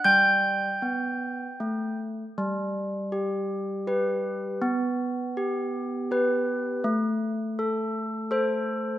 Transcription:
\new Staff \with { instrumentName = "Handbells" } { \time 3/4 \key g \major \tempo 4 = 81 << { <g'' g'''>2~ <g'' g'''>8 r8 | r2. | r2. | r2. | } \\ { g4 b4 a4 | g4 g'4 <g' b'>4 | b4 g'4 <g' b'>4 | a4 a'4 <a' c''>4 | } >> }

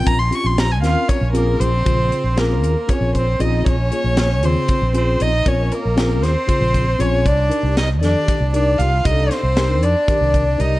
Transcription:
<<
  \new Staff \with { instrumentName = "Violin" } { \time 7/8 \key bes \dorian \tempo 4 = 117 bes''16 c'''16 des'''16 c'''16 bes''16 aes''16 f''8 des''8 bes'8 c''8~ | c''4 bes'4 des''8 c''8 ees''8 | des''4. c''4 c''8 ees''8 | des''8 bes'4 c''4. des''8 |
d''4 ees''8 d''4 d''8 f''8 | ees''8 c''4 d''4. ees''8 | }
  \new Staff \with { instrumentName = "Tine electric piano" } { \time 7/8 \key bes \dorian <c' des' f' bes'>8 <c' des' f' g'>8 r8 <c' des' f' bes'>8 r8 <c' des' f' aes'>8 r8 | <des c' f' aes'>8 r8 <c' des' f' aes'>8 r8 <c' des' f' aes'>8 r8 <c' des' f' aes'>8 | r8 <bes des' f' aes'>8 r8 <des c' f' aes'>8 r8 <c' des' f' aes'>8 r8 | <c' des' f' bes'>8 r8 <c' des' f' aes'>8 r8 <des c' f' aes'>8 r8 <c' des' f' aes'>8 |
r8 <d' ees' g' bes'>8 r8 <ees d' g' a'>8 r8 <d' ees' g' bes'>8 r8 | <d' ees' g' a'>8 r8 <d' ees' g' bes'>8 r8 <ees d' g' bes'>8 r8 <d' ees' g' bes'>8 | }
  \new Staff \with { instrumentName = "Tenor saxophone" } { \time 7/8 \key bes \dorian r4. f'8 des'8 bes8 c'8~ | c'4 bes4 des'8 c'8 ees'8 | des'4. c'4 c'8 ees'8 | des'8 bes4 c'4. des'8 |
d'4 ees'8 d'4 d'8 f'8 | ees'8 c'4 d'4. ees'8 | }
  \new Staff \with { instrumentName = "Fretless electric bass" } { \clef bass \time 7/8 \key bes \dorian bes,,8 r16 bes,,8. ees,16 r8 bes,,8. bes,,8 | bes,,8 r16 bes,,8. ees,16 r8 bes,,8. bes,,8 | bes,,8 r16 bes,,8. ees,16 r8 bes,,8. bes,,8 | bes,,8 r16 bes,,8. ees,16 r8 bes,,8. bes,,8 |
c,8 r16 c,8. f,16 r8 c,8. c,8 | c,8 r16 c,8. f,16 r8 c,8. c,8 | }
  \new DrumStaff \with { instrumentName = "Drums" } \drummode { \time 7/8 <hh bd>8 hh8 <hh sn>8 <hh sn>8 <hh bd>8 hh8 hh8 | <hh bd>8 hh8 <hh sn>8 hh8 <hh bd>8 <hh bd>8 hh8 | <hh bd>8 hh8 <hh sn>8 hh8 <hh bd>8 hh8 hh8 | <hh bd>8 hh8 <hh sn>8 <hh sn>8 <hh bd>8 <hh bd>8 hh8 |
<hh bd>8 hh8 <hh sn>8 <hh sn>8 <hh bd>8 hh8 hh8 | <hh bd>8 <hh sn>8 <hh sn>8 hh8 <hh bd>8 <hh bd>8 hh8 | }
>>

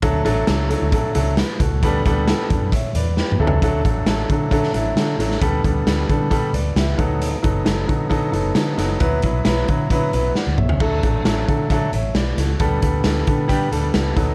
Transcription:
<<
  \new Staff \with { instrumentName = "Grand piano" } { \time 4/4 \key d \major \tempo 4 = 134 << { r2. b'8 <fis' a'>8~ | <fis' a'>8 r4. <cis'' e''>8 <b' d''>8 <g' b'>4 | r1 | r2 r8 <b' d''>8 <g' b' e''>8 fis''8 |
r1 | r2. <d'' fis''>8 <cis'' e''>8~ | <cis'' e''>8 r2 <cis'' e''>8 <b' d''>8 <fis' a'>8~ | <fis' a'>8 r2. r8 | } \\ { <fis a d' a'>8 <fis a d' a'>8 <fis a d' a'>8 <fis a d' a'>8 <fis a d' a'>8 <fis a d' a'>8 r4 | <g b d' a'>8 <g b d' a'>8 <g b d' a'>8 <g b d' a'>8 r4. <fis a d' a'>8 | <fis a d' a'>8 <fis a d' a'>8 <fis a d' a'>8 <fis a d' a'>8 <fis a d' a'>8 <fis a d' e'>8 <fis a d' a'>8 <fis a d' a'>8 | <g b d' a'>8 <g b d' a'>8 <g b d' a'>8 <g b d' a'>8 <g b d' a'>8 r4 <fis b dis' a'>8~ |
<fis b dis' a'>8 <fis b dis' a'>8 <fis b dis' a'>8 <fis b dis' a'>8 <fis b dis' a'>8 <fis b dis' a'>8 <fis b dis' a'>8 <fis b dis' a'>8 | <fis b e' b'>8 <fis b e' b'>8 <fis b e' b'>8 <fis b e' b'>8 <fis b e' b'>8 <fis b e' b'>8 r4 | <fis a d' a'>8 <fis a d' a'>8 <fis a d' a'>8 <fis a d' a'>8 <fis a d' a'>8 r4. | <g b d' a'>8 <g b d' a'>8 <g b d' a'>8 <g b d' a'>8 <g b d' g'>8 <g b d' a'>8 <g b d' a'>8 <fis b dis' a'>8 | } >> }
  \new Staff \with { instrumentName = "Fingered electric bass" } { \clef bass \time 4/4 \key d \major d,8 a,,8 cis,8. d,16 r8 cis,8. r16 cis,16 cis,16 | d,8 d,8. r16 e,16 fis,16 r8 e,8. r16 d,16 cis,16 | d,8 a,,8 a,,8 d8 d8 a,,8 d8 a,,8 | d,8 d,8 d,8 d4 d,8 cis,8 d,8~ |
d,8 fis,,8 fis,,8 d8 d8 fis,,8 d8 fis,,8 | d,8 b,,8 b,,8 d8 d8 b,,8 r16 d,16 b,,16 cis,16 | d,8 a,,8 a,,8 d8 d8 a,,8 b,,8 cis,8 | d,8 d,8 d,8 d8 d8 d,8 cis,8 d,8 | }
  \new DrumStaff \with { instrumentName = "Drums" } \drummode { \time 4/4 <hh bd>8 hh8 <hh sn>8 hh8 <hh bd>8 hh8 <hh sn>8 <hh bd>8 | <hh bd>8 <hh bd>8 <hh sn>8 <hh bd>8 <hh bd>8 hh8 \tuplet 3/2 { sn8 toml8 tomfh8 } | <hh bd>8 <hh bd>8 <hh sn>8 <hh bd>8 <hh bd>16 sn16 hh8 <hh sn>8 <hh sn>16 sn16 | <hh bd>8 <hh bd>8 <hh sn>8 <hh bd>8 <hh bd>8 hh8 <hh sn>8 <hh bd>8 |
hh8 <hh bd>8 <hh sn>8 <hh bd>8 <hh bd>8 hh8 <hh sn>8 <hh sn>8 | <hh bd>8 <hh bd>8 <hh sn>8 <hh bd>8 <hh bd>8 hh8 sn8 toml16 tomfh16 | <cymc bd>8 <hh bd>8 <hh sn>8 <hh bd>8 <hh bd>8 hh8 <hh sn>8 <hh sn>8 | <hh bd>8 <hh bd>8 <hh sn>8 <hh bd>8 <hh bd>8 hh8 <hh sn>8 <hh bd sn>8 | }
>>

